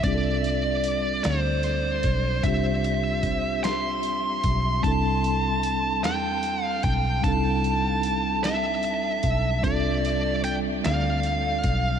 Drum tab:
HH |xxxxxx|xxxxxx|xxxxxx|xxxxxx|
SD |---o--|---o--|---o--|---o--|
BD |o----o|o-o--o|o----o|o----o|

HH |xxxxxx|
SD |---o--|
BD |o----o|